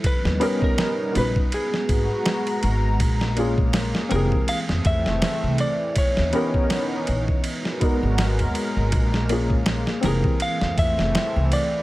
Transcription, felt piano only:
X:1
M:4/4
L:1/8
Q:"Swing 16ths" 1/4=81
K:Ebm
V:1 name="Felt piano"
z [CD=GB]2 [CE_Gc]4- [CEGc] | z [B,DFA]2 [=E,=C=GA]4- [E,CGA] | z [CD=GB]2 z2 [CE_GB] z2 | z [B,DFA]2 [=E,=C=GA]4- [E,CGA] |]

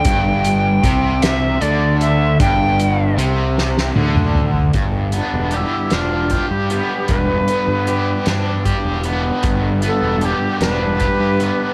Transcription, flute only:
X:1
M:6/8
L:1/16
Q:3/8=51
K:G
V:1 name="Flute"
g6 e2 d2 e2 | g4 z8 | z2 D2 E2 =F3 G G2 | B8 z4 |
z2 A2 G2 B6 |]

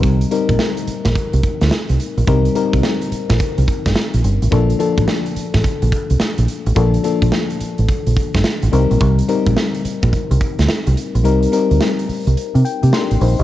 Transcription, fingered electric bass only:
X:1
M:4/4
L:1/16
Q:"Swing 16ths" 1/4=107
K:Cdor
V:1 name="Fingered electric bass" clef=bass
C,,2 z B,,, z3 B,,, z C,, z D,, z C,, z B,,, | C,,2 z C,, z3 B,,, z C,, z G,,, z B,,, G,,, A,,, | B,,,2 z A,,, z3 A,,, z B,,, z C,, z B,,, z A,,, | B,,,2 z B,,, z3 A,,, z B,,, z G,,, z A,,, C,, B,,, |
C,,2 z B,,, z3 B,,, z C,, z D,, z C,, z B,,, | C,,2 z D,, z3 C,, z C, z C, z A,,, B,,, C,, |]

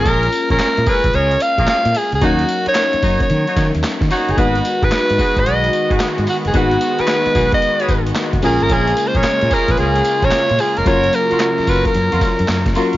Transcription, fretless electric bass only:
X:1
M:4/4
L:1/16
Q:"Swing 16ths" 1/4=111
K:G#dor
V:1 name="Fretless electric bass" clef=bass
A,,,2 z A,,, z A,, z A,,, C,,2 z A,,, z A,, z C,, | D,,2 z4 F,, z D, z D, D,, z D, z F,,, | G,,,2 z G,,, z G,, z G,,, B,,,2 z G,,, z G,, z F,,, | G,,,2 z4 B,,, z3 G,,,2 z F,,, A,,, G,,, |
A,,,2 z A,,, z A,, z A,,, C,,2 z A,,, z A,, z E,,, | F,,,2 z4 F,,, z F,, E,, z F,, F,, F,,, z2 |]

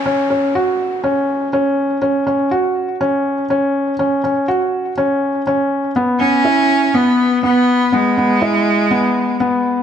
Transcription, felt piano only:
X:1
M:4/4
L:1/8
Q:1/4=122
K:Emix
V:1 name="Felt piano"
C C F2 C2 C2 | C C F2 C2 C2 | C C F2 C2 C2 | B, B, E2 B,2 B,2 |
B, B, E2 B,2 B,2 |]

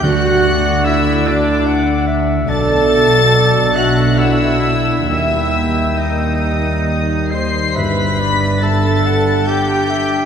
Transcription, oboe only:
X:1
M:3/4
L:1/8
Q:1/4=70
K:G
V:1 name="Oboe"
F2 E D2 z | A3 F E2 | E2 _E3 c | B2 A z G2 |]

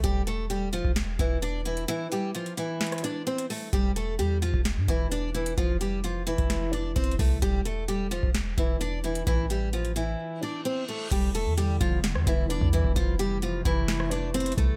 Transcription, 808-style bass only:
X:1
M:4/4
L:1/16
Q:1/4=130
K:Ephr
V:1 name="808-style bass" clef=bass
E,,,6- E,,, E,,,3 E,,,6 | z16 | E,,,4 E,,3 E,,,2 G,, E,,,6 | F,,,6- F,,, F,,,4- F,,, F,,,2 C,,2 |
E,,,6- E,,, E,,,3 E,,,6 | A,,,8 z8 | E,,,3 E,,3 E,,,3 E,, E,,,3 E,,2 E,,, | F,,,6 F,,,8 C,,2 |]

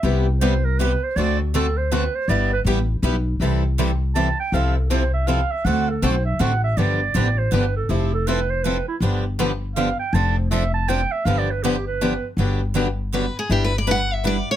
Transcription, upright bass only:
X:1
M:3/4
L:1/8
Q:"Swing" 1/4=160
K:G
V:1 name="Upright bass" clef=bass
C,,6 | D,,6 | G,,,2 A,,,2 B,,,2 | [K:Gmix] C,,6 |
C,,6 | D,,2 B,,,2 A,,,2 | G,,,2 A,,,2 G,,,2 | F,,,6 |
G,,,6 | F,,,6 | G,,,6 | [K:G] G,,,6 |
G,,,6 |]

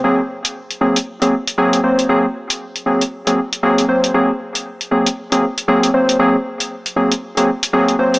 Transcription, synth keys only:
X:1
M:4/4
L:1/16
Q:"Swing 16ths" 1/4=117
K:Abmix
V:1 name="Synth keys"
[G,B,CA] z4 z [G,B,CA] z2 [G,B,CA] z2 [G,B,CA]2 [G,B,Cc]2 | [G,B,CA] z4 z [G,B,CA] z2 [G,B,CA] z2 [G,B,CA]2 [G,B,Cc]2 | [G,B,CA] z4 z [G,B,CA] z2 [G,B,CA] z2 [G,B,CA]2 [G,B,Cc]2 | [G,B,CA] z4 z [G,B,CA] z2 [G,B,CA] z2 [G,B,CA]2 [G,B,Cc]2 |]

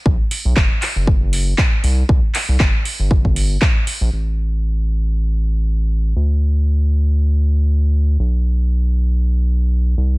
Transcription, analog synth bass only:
X:1
M:4/4
L:1/16
Q:"Swing 16ths" 1/4=118
K:C
V:1 name="Analog synth bass" clef=bass
B,,, z2 B,,, ^F,,, z2 F,,,4- F,,, z2 C,, z | C,, z2 C,, G,,, z2 G,,,4- G,,, z3 _B,,, | A,,,16 | D,,16 |
B,,,12- B,,,2 C,,2 |]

